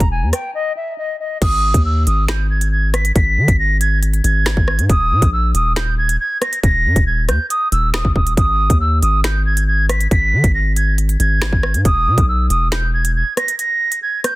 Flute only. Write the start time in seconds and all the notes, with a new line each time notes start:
0.11 G#5
0.33 G5
0.55 D#5
0.76 E5
0.98 D#5
1.20 D#5
1.42 D#6
1.85 E6
2.07 D#6
2.29 G6
2.50 G#6
2.72 G#6
2.94 B6
3.16 B6
3.59 A#6
3.81 G#6
4.24 G#6
4.90 D#6
5.33 E6
5.55 D#6
5.76 G6
5.98 G#6
6.20 G#6
6.42 A#6
6.63 A#6
7.07 G#6
7.29 G6
7.50 D#6
7.72 E6
7.94 D#6
8.15 D#6
8.37 D#6
8.81 E6
9.02 D#6
9.24 G6
9.46 G#6
9.68 G#6
9.89 B6
10.11 B6
10.55 A#6
10.76 G#6
11.20 G#6
11.85 D#6
12.29 E6
12.50 D#6
12.72 G6
12.94 G#6
13.16 G#6
13.37 A#6
13.59 A#6
14.03 G#6
14.24 G6